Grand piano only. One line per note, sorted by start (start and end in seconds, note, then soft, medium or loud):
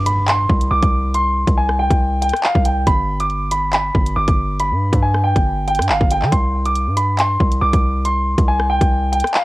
0.06 0.25 B5 loud
0.28 0.69 C6 loud
0.71 1.11 D6 loud
1.14 1.55 C6 loud
1.57 1.76 G#5 medium
1.79 2.20 G5 medium
2.22 2.41 G5 medium
2.45 2.63 F5 medium
2.65 2.84 G5 medium
2.87 3.18 B5 loud
3.20 3.50 D6 medium
3.52 3.70 B5 medium
3.73 4.14 B5 medium
4.16 4.57 D6 medium
4.60 5.00 B5 medium
5.02 5.21 G#5 medium
5.24 5.65 G5 medium
5.68 5.86 G5 medium
5.89 6.08 F5 medium
6.11 6.30 G5 medium
6.32 6.63 C6 medium
6.65 6.95 D6 medium
6.97 7.15 B5 medium
7.19 7.59 C6 medium
7.61 8.02 D6 medium
8.05 8.46 C6 loud
8.48 8.67 G#5 medium
8.70 9.10 G5 medium
9.12 9.31 G5 medium
9.35 9.44 F5 medium